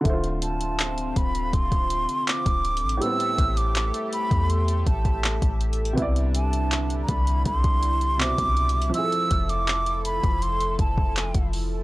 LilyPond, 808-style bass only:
\new Staff \with { instrumentName = "808-style bass" } { \clef bass \time 4/4 \key d \dorian \tempo 4 = 81 d,,4. d,,8 d,,8. r8 d,,8 a,,16 | r8 a,,8. r8 e,8. a,,8. a,,8. | c,4. c,8 c,4~ c,16 c,8. | r8 f,,4~ f,,16 f,,8. f,,8. f,,8. | }